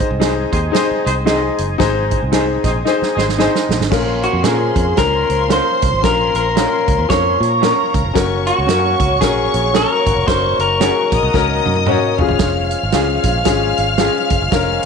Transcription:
Already playing: grand piano G#2, tonewheel organ G#3 C4 D#4 G#4
0.00 kick
0.11 fingered electric bass C2
0.20 clean electric guitar C4 D#4 G#4, grand piano D#4 G#4 C5, snare, closed hi-hat
0.51 fingered electric bass D#2, horn section C4 D#4 G#4 C5, kick, closed hi-hat
0.72 horn section C4 D#4 G#4 C5, grand piano D#4 G#4 C5, snare, closed hi-hat
0.91 muted fingered electric bass stroke
1.05 fingered electric bass C2, horn section C4 D#4 G#4 C5, closed hi-hat
1.25 horn section C4 D#4 G#4 C5, clean electric guitar C4 D#4 G#4, grand piano D#4 G#4 D#5, snare, closed hi-hat
1.58 fingered electric bass F#1, closed hi-hat
1.78 fingered electric bass G#1, grand piano G#2 D#4 G#4 C5, kick, snare, closed hi-hat
2.11 kick, closed hi-hat
2.23 fingered electric bass C2
2.32 clean electric guitar C4 D#4 G#4, grand piano D#4 G#4 C5, snare, closed hi-hat
2.64 fingered electric bass A#1, horn section C4 D#4 G#4 C5, kick, snare, closed hi-hat
2.85 horn section C4 D#4 G#4 C5, grand piano D#4 G#4 C5, snare
3.02 muted fingered electric bass stroke, snare
3.16 fingered electric bass G#1, horn section C4 D#4 G#4 C5, snare
3.29 snare
3.38 clean electric guitar C4 D#4 G#4, horn section C4 D#4 G#4 C5, grand piano D#4 G#4 C5, snare
3.55 snare
3.69 fingered electric bass A#1, snare
3.80 fingered electric bass G#1, snare
3.90 fingered electric bass A#1, grand piano A#2 C#4 F4 A#4, tonewheel organ F3 A#3 C#4 F4, string section C5 C6, kick, snare, crash
4.23 clean electric guitar F#4, closed hi-hat
4.33 fingered electric bass F2
4.44 fingered electric bass A#2, clean electric guitar C#4 F4 G#4 A#4, grand piano C#4 F4 A#4, snare, closed hi-hat
4.76 fingered electric bass F2, kick, closed hi-hat
4.97 fingered electric bass C#2, grand piano C#4 F4 A#4, clean electric guitar A#4, kick, snare, closed hi-hat
5.30 fingered electric bass C#2, closed hi-hat
5.48 grand piano C#4 F4 A#4, clean electric guitar C#4 F4 A#4, snare, closed hi-hat
5.53 clean electric guitar C5
5.82 fingered electric bass C2, kick, closed hi-hat
5.92 fingered electric bass G#1
6.03 fingered electric bass A#1, grand piano A#2 C#4 F4 A#4, clean electric guitar A#4, kick, snare, closed hi-hat
6.34 fingered electric bass A#1, clean electric guitar A#4, closed hi-hat
6.56 clean electric guitar C#4 F4 A#4, grand piano C#4 F4 A#4, snare, closed hi-hat
6.88 fingered electric bass C#2, kick, closed hi-hat
6.99 fingered electric bass D#2
7.09 fingered electric bass F2, grand piano C#4 F4 A#4, clean electric guitar C#5, kick, snare, closed hi-hat
7.40 fingered electric bass A#2, string section A#4 A#5, closed hi-hat
7.61 grand piano C#4 F4 A#4, clean electric guitar C#4 F4 A#4, snare, closed hi-hat
7.94 fingered electric bass C#2, kick, closed hi-hat
8.04 fingered electric bass F1
8.14 fingered electric bass F#1, tonewheel organ F#3 F#4, grand piano C#4 F#4 A#4, string section C#5 C#6, kick, snare, closed hi-hat
8.47 clean electric guitar F#4, closed hi-hat
8.58 fingered electric bass C#2
8.67 fingered electric bass F#2, clean electric guitar C#4 F#4 A#4, grand piano C#4 F#4 A#4, snare, closed hi-hat
9.00 fingered electric bass C#2, kick, closed hi-hat
9.21 fingered electric bass A#1, grand piano C#4 F#4 A#4, clean electric guitar G#4, kick, snare, closed hi-hat
9.54 fingered electric bass A#1, closed hi-hat
9.74 grand piano C#4 F#4 A#4, clean electric guitar C#4 F#4 A#4, snare, closed hi-hat
10.06 fingered electric bass G#1, kick, closed hi-hat
10.16 fingered electric bass F1
10.27 fingered electric bass F#1, grand piano C#4 F#4 A#4, tonewheel organ D#4, clean electric guitar C5, kick, snare, closed hi-hat
10.59 fingered electric bass F#1, clean electric guitar A#4, closed hi-hat
10.80 clean electric guitar C#4 F#4 A#4, grand piano C#4 F#4 G#4, snare, closed hi-hat
11.12 fingered electric bass A#1, string section D#5 D#6, kick, closed hi-hat
11.23 fingered electric bass C2
11.34 fingered electric bass C#2, grand piano C#4 F#4 A#4, kick, snare
11.65 fingered electric bass F#2, high tom
11.75 high tom
11.86 clean electric guitar C#4 F#4 A#4, grand piano C#4 F#4 C#5, mid tom
12.18 fingered electric bass F1, tonewheel organ F3 G#3 C#4 F4, grand piano C#4 F4 G#4, string section F5 F6, floor tom
12.28 fingered electric bass F#1, floor tom
12.39 fingered electric bass F1, kick, snare, closed hi-hat
12.71 closed hi-hat
12.83 fingered electric bass G#1
12.92 fingered electric bass C#2, clean electric guitar C#4 F4 G#4, grand piano C#4 F4 G#4, snare, closed hi-hat
13.23 fingered electric bass A#1, kick, snare, closed hi-hat
13.45 fingered electric bass G#1, grand piano C#4 F4 G#4, kick, snare, closed hi-hat
13.77 fingered electric bass G#1, closed hi-hat
13.98 grand piano C#4 F4 G#4, clean electric guitar C#4 F4 G#4, snare, closed hi-hat
14.30 fingered electric bass F#1, kick, closed hi-hat
14.42 fingered electric bass F#1
14.51 fingered electric bass F1, grand piano C#4 F4 A#4, kick, snare, closed hi-hat

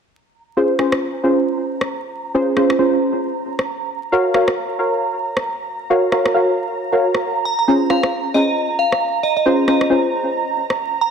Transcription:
0.12 ambient pad A#5
0.57 synth stab C#4 F4 G#4 C5
0.79 synth stab C#4 F4 G#4 C5, cross-stick
0.92 cross-stick
1.23 synth stab C#4 F4 G#4 C5
1.81 cross-stick
2.34 synth stab C#4 F4 G#4 C5
2.57 synth stab C#4 F4 G#4 C5, cross-stick
2.70 cross-stick
2.79 synth stab C#4 F4 G#4 C5
3.59 cross-stick
4.12 synth stab F#4 A#4 C#5 F5
4.34 synth stab F#4 A#4 C#5 F5, cross-stick
4.48 cross-stick
4.79 synth stab F#4 A#4 C#5 F5
5.37 cross-stick
5.90 synth stab F#4 A#4 C#5 F5
6.12 synth stab F#4 A#4 C#5 F5, cross-stick
6.26 cross-stick
6.34 synth stab F#4 A#4 C#5 F5
6.92 synth stab F#4 A#4 C#5 F5
7.14 cross-stick
7.45 synth bell A#5
7.59 synth bell A#5
7.68 synth stab C#4 F4 G#4 C5
7.90 synth stab C#4 F4 G#4 C5, synth bell F5, cross-stick
8.03 cross-stick
8.34 synth stab C#4 F4 G#4 C5, synth bell D#5
8.79 synth bell F5
8.92 cross-stick
9.23 synth bell D#5
9.37 synth bell D#5
9.45 synth stab C#4 F4 G#4 C5
9.68 synth stab C#4 F4 G#4 C5, synth bell D#5, cross-stick
9.81 cross-stick
9.90 synth stab C#4 F4 G#4 C5
10.70 cross-stick
11.01 synth bell A#5

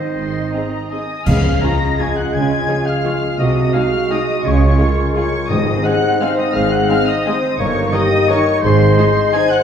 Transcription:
Already playing: harp G#2 C4 D#4 D#5, cello section D#3, bassoon C4, french horn section D#4, clarinet C5, violin section D#5, flute section D#5, oboe D#5
0.17 double bass section G#1, violin section C6
0.52 viola section C4 G#4, violin section A#5
0.90 viola section C4 G#4, oboe D#5, flute section D#5, violin section G#5 D#6
1.26 double bass section C#2, harp C#3, cello section C#3, timpani C#3, bassoon G#3, clarinet G#4, french horn section G#4, oboe F5, flute section F5, violin section F6, concert bass drum, crash
1.45 harp C#4
1.61 viola section F3 C#4, violin section F4 G#4 A#6, harp F4, oboe A#5, flute section A#5
1.82 harp C#5
2.00 viola section F3 C#4, french horn section F4, harp F4, violin section F4 G#4 G#6, oboe G#5, flute section G#5
2.17 harp G#3, oboe F#5, flute section F#5, violin section F#6
2.34 double bass section C#2, cello section C#3, harp C#3, flute section G#5, oboe G#5, violin section G#6
2.51 harp C#4
2.68 viola section F3 C#4, harp F4, violin section F4 G#4
2.86 harp C#5, oboe F5, flute section F5, violin section F6
3.04 viola section F3 C#4, french horn section F4, violin section F4 G#4, harp F4
3.23 harp G#3
3.39 double bass section C2, cello section C3, harp C3, bassoon G#3, clarinet F#4, french horn section F#4, oboe D#5, flute section D#5, violin section D#6
3.56 harp F#3
3.73 viola section G#3 D#4, violin section F#4 G#4 F6, oboe F5, flute section F5
3.93 harp G#4
4.10 viola section G#3 D#4, violin section F#4 G#4 D#6, french horn section G#4, oboe D#5, flute section D#5
4.29 harp G#3
4.45 double bass section C#2, cello section C#3, harp C#3, clarinet F4, flute section C#5, oboe C#5, violin section C#6
4.79 viola section G#3 F4, violin section F4 G#4, harp F4, french horn section A#4
4.99 harp G#4
5.16 viola section G#3 F4, violin section F4 G#4 C#6, oboe C#5, flute section C#5
5.35 harp G#3
5.50 double bass section G#1, timpani G#2, cello section G#2, harp G#2, bassoon C4, clarinet D#4, french horn section G#4, oboe D#5, flute section D#5, violin section D#6
5.67 harp D#3
5.84 viola section G#3 C4, violin section D#4 G#4 F#6, harp D#4, oboe F#5, flute section F#5
6.20 viola section G#3 C4, violin section D#4 G#4 F6, harp D#4, french horn section C5, oboe F5, flute section F5
6.38 harp G#3, oboe D#5, flute section D#5, violin section D#6
6.54 double bass section G#1, cello section G#2, harp G#2, french horn section G#4, flute section F5, oboe F5, violin section F6
6.71 harp D#3, oboe F#5, flute section F#5, violin section F#6
6.89 viola section G#3 C4, harp D#4, violin section D#4 G#4 F6, flute section F5, oboe F5
7.07 harp C5, flute section D#5, oboe D#5, violin section D#6
7.26 viola section G#3 C4, harp D#4, violin section D#4 G#4, french horn section C5
7.43 harp G#3
7.59 double bass section G1, harp G2, cello section G2, bassoon A#3, clarinet D#4, french horn section A#4, oboe C#5, flute section C#5, violin section C#6
7.76 harp G3
7.93 viola section D#3 D#4, violin section D#4 A#4 D#6, harp D#4, french horn section G4, oboe D#5, flute section D#5
8.12 harp D#5
8.28 viola section D#3 D#4, violin section D#4 A#4 C#6, harp D#4, french horn section A#4, oboe C#5, flute section C#5
8.47 harp A#3
8.62 double bass section G#1, harp G#2, cello section G#2, bassoon G#3, french horn section G#4, oboe C5, flute section C5, violin section C6
8.80 harp D#3
8.98 viola section G#3 D#4, harp D#4, violin section D#4 G#4
9.16 harp D#5
9.33 viola section G#3 D#4, violin section D#4 G#4 G#6, harp D#4, french horn section C5, oboe G#5, flute section G#5
9.50 harp G#3, oboe F#5, flute section F#5, violin section F#6

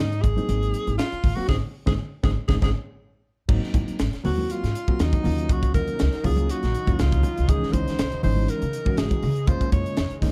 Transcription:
Already playing: upright bass G#2, alto saxophone D#4
0.12 closed hi-hat
0.22 upright bass G#1, alto saxophone G#4, kick, closed hi-hat, low conga
0.36 reed electric piano F#3 A#3 C4 D#4, closed hi-hat, high conga
0.49 upright bass G#1, closed hi-hat, high conga
0.63 closed hi-hat
0.74 closed hi-hat
0.87 upright bass G#1, closed hi-hat, high conga
0.98 alto saxophone F4, snare, closed hi-hat
1.12 muted upright bass stroke, closed hi-hat
1.24 upright bass G#1, kick, open hi-hat, low conga
1.36 reed electric piano F#3 A#3 C4 F#4, alto saxophone F#4, muted upright bass stroke
1.47 upright bass G#1, reed electric piano G#3 C4 D#4, alto saxophone G#4, kick, snare, low conga
1.86 upright bass G#1, reed electric piano G#3 C4 D#4, alto saxophone G#4, kick, snare, low conga
2.23 upright bass G#1, reed electric piano G#3 C4 D#4, alto saxophone G#4, kick, snare, low conga
2.48 upright bass G#1, reed electric piano G#3 C4 D#4, alto saxophone G#4, kick, snare, low conga
2.62 upright bass G#1, reed electric piano G#3 C4 D#4, alto saxophone G#4, kick, snare, low conga
3.48 upright bass G#1, ambient pad C3 F#3 G#3 D#4, reed electric piano F#3 A#3 C4 D#4, kick, crash
3.63 snare
3.74 upright bass G#1, kick, closed hi-hat, high conga, low conga
3.88 muted upright bass stroke, closed hi-hat
3.99 upright bass G#1, snare, closed hi-hat
4.13 muted upright bass stroke, snare, closed hi-hat
4.24 upright bass D#2, reed electric piano F#3 A#3 C4 F#4, alto saxophone F#4, open hi-hat, low conga
4.38 high conga
4.50 alto saxophone F4, closed hi-hat
4.63 upright bass G#2, snare, closed hi-hat
4.75 closed hi-hat
4.87 reed electric piano F#3 A#3 C4 F#4, muted upright bass stroke, kick
4.99 upright bass D#2, alto saxophone D#4, snare, closed hi-hat
5.13 kick, closed hi-hat, high conga
5.23 upright bass D#2, ambient pad C#3 D#3, reed electric piano F#3 A#3 C#4 F4, open hi-hat, low conga
5.38 closed hi-hat
5.49 upright bass C#2, alto saxophone F#4, kick, closed hi-hat
5.63 kick, closed hi-hat
5.74 upright bass D#2, alto saxophone A#4, kick, closed hi-hat, high conga, low conga
5.88 closed hi-hat
5.99 upright bass C#2, snare, closed hi-hat
6.13 snare, closed hi-hat
6.23 upright bass C#2, reed electric piano F#3 A#3 C#4 F4, alto saxophone G#4, kick, open hi-hat, low conga
6.37 closed hi-hat, high conga
6.50 alto saxophone F#4, closed hi-hat
6.63 upright bass A#1, snare, closed hi-hat
6.74 closed hi-hat
6.87 upright bass D#2, reed electric piano F#3 A#3 C#4 F4, kick, closed hi-hat, high conga
6.99 upright bass C#2, alto saxophone F4, snare, closed hi-hat
7.12 kick, closed hi-hat, high conga
7.23 closed hi-hat, low conga
7.37 upright bass C#2, closed hi-hat
7.48 upright bass C#2, reed electric piano E3 G#3 C#4 D#4, ambient pad E3 G#3, alto saxophone G#4, kick, closed hi-hat
7.63 muted upright bass stroke, snare
7.73 upright bass C#2, alto saxophone C5, kick, closed hi-hat, high conga, low conga
7.88 muted upright bass stroke, snare, closed hi-hat
7.99 upright bass C#2, snare, closed hi-hat
8.12 muted upright bass stroke, closed hi-hat
8.23 upright bass G#1, reed electric piano E3 G#3 C#4 D#4, alto saxophone C5, open hi-hat, low conga
8.36 high conga
8.48 alto saxophone A#4, closed hi-hat
8.62 upright bass C#3, closed hi-hat
8.73 closed hi-hat
8.85 reed electric piano E3 G#3 C#4 F#4, muted upright bass stroke, kick, high conga
8.97 upright bass G#1, alto saxophone G#4, snare, closed hi-hat
9.11 kick, closed hi-hat, high conga
9.23 upright bass C#3, open hi-hat, low conga
9.36 closed hi-hat
9.47 upright bass F#2, ambient pad F#3 A#3 F4, reed electric piano G#3 A#3 C#4 F4, alto saxophone C5, kick, closed hi-hat, low conga
9.61 kick, closed hi-hat
9.72 upright bass F#2, alto saxophone C#5, kick, closed hi-hat, high conga, low conga
9.86 closed hi-hat
9.97 upright bass F2, snare, closed hi-hat
10.11 muted upright bass stroke, closed hi-hat
10.21 upright bass F2, reed electric piano G#3 A#3 C#4 D#4, kick, snare, open hi-hat, low conga

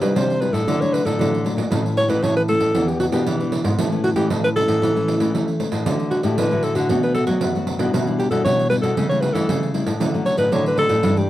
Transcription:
Already playing: nylon-string guitar C3
0.01 nylon-string guitar G3 D4 E4, alto saxophone B4, pandeiro
0.16 nylon-string guitar C3 G3, alto saxophone C5, pandeiro
0.30 pandeiro
0.41 nylon-string guitar G3 D4 E4, alto saxophone B4, pandeiro
0.53 nylon-string guitar A2, alto saxophone A4, pandeiro
0.68 nylon-string guitar D3 F#3 A3 D4, pandeiro
0.81 nylon-string guitar F#3 A3 D4, alto saxophone C#5, pandeiro
0.93 alto saxophone B4, pandeiro
1.05 nylon-string guitar A2 F#3 A3 D4, alto saxophone A4, pandeiro
1.19 nylon-string guitar A2 D3, pandeiro
1.34 pandeiro
1.45 nylon-string guitar F#3 A3 D4, pandeiro
1.57 nylon-string guitar A#2, pandeiro
1.71 nylon-string guitar A2 E3 A3 C#4, pandeiro
1.86 pandeiro
1.97 alto saxophone C#5, pandeiro
2.08 nylon-string guitar E3 A3 C#4, alto saxophone B4, pandeiro
2.22 nylon-string guitar A2 E3, alto saxophone C#5, pandeiro
2.37 alto saxophone B4, pandeiro
2.48 nylon-string guitar E3 A3 C#4, alto saxophone A4, pandeiro
2.60 nylon-string guitar A2, pandeiro
2.75 nylon-string guitar E2 E3 B3 D4 G4, pandeiro
2.88 alto saxophone G4, pandeiro
3.00 alto saxophone F#4, pandeiro
3.12 nylon-string guitar B2 B3 D4 G4, alto saxophone G4, pandeiro
3.26 nylon-string guitar B2 E3, pandeiro
3.40 nylon-string guitar B3 D4 G4, pandeiro
3.52 pandeiro
3.64 nylon-string guitar G#2, pandeiro
3.78 nylon-string guitar A2 E3 A3 C#4, pandeiro
3.92 nylon-string guitar E3 A3 C#4, pandeiro
4.04 alto saxophone F#4, pandeiro
4.16 nylon-string guitar E3 A3 C#4, alto saxophone G4, pandeiro
4.30 nylon-string guitar A2 E3, pandeiro
4.44 alto saxophone B4, pandeiro
4.56 nylon-string guitar E3 A3 C#4, alto saxophone A4, pandeiro
4.68 nylon-string guitar A2, pandeiro
4.82 nylon-string guitar A2 E3, pandeiro
4.95 nylon-string guitar E3 A3 C#4, pandeiro
5.08 pandeiro
5.20 nylon-string guitar E3 A3 C#4, pandeiro
5.34 nylon-string guitar E3 A3, pandeiro
5.48 pandeiro
5.59 nylon-string guitar E3 A3 C#4, pandeiro
5.72 nylon-string guitar A2, pandeiro
5.86 nylon-string guitar D3 A3 E4 F#4, pandeiro
5.99 pandeiro
6.11 alto saxophone F#4, pandeiro
6.23 nylon-string guitar A2 A3 E4 F#4, alto saxophone G4, pandeiro
6.38 nylon-string guitar A2 D3, alto saxophone B4, pandeiro
6.51 nylon-string guitar A3 E4 F#4, pandeiro
6.63 alto saxophone A4, pandeiro
6.75 nylon-string guitar D3, alto saxophone F#4, pandeiro
6.89 nylon-string guitar B2 A3 D4 F#4, pandeiro
7.03 alto saxophone B4, pandeiro
7.15 alto saxophone A4, pandeiro
7.27 nylon-string guitar F#3 A3 D4 F#4, alto saxophone F#4, pandeiro
7.41 nylon-string guitar F#2 B3, pandeiro
7.55 nylon-string guitar A3 D4 F#4, pandeiro
7.67 pandeiro
7.79 nylon-string guitar B2 G3 D4 E4, pandeiro
7.93 nylon-string guitar B2, pandeiro
8.06 nylon-string guitar G3 D4 E4, pandeiro
8.19 alto saxophone G4, pandeiro
8.30 nylon-string guitar B2 G3 D4 E4, alto saxophone A4, pandeiro
8.45 nylon-string guitar B2, alto saxophone C#5, pandeiro
8.59 pandeiro
8.70 nylon-string guitar G3 D4 E4, alto saxophone B4, pandeiro
8.82 nylon-string guitar B2, alto saxophone A4, pandeiro
8.97 nylon-string guitar C#3 G3 A3 E4, pandeiro
9.09 nylon-string guitar G3 A3 E4, alto saxophone C#5, pandeiro
9.21 alto saxophone B4, pandeiro
9.33 nylon-string guitar E3 G3 A3 E4, alto saxophone A4, pandeiro
9.48 nylon-string guitar C#3, pandeiro
9.63 pandeiro
9.74 nylon-string guitar G3 A3 E4, pandeiro
9.86 nylon-string guitar A2, pandeiro
10.00 nylon-string guitar D3 F#3 A3 C#4, pandeiro
10.14 nylon-string guitar F#3 A3 C#4, pandeiro
10.26 alto saxophone C#5, pandeiro
10.37 nylon-string guitar A2 F#3 A3 C#4, alto saxophone B4, pandeiro
10.52 nylon-string guitar A2 D3, alto saxophone C#5, pandeiro
10.66 alto saxophone B4, pandeiro
10.77 nylon-string guitar F#3 A3 C#4, alto saxophone A4, pandeiro
10.89 nylon-string guitar A2, pandeiro
11.03 nylon-string guitar G2 G3 A3 D4, pandeiro
11.17 nylon-string guitar G3 A3 D4, alto saxophone G4, pandeiro

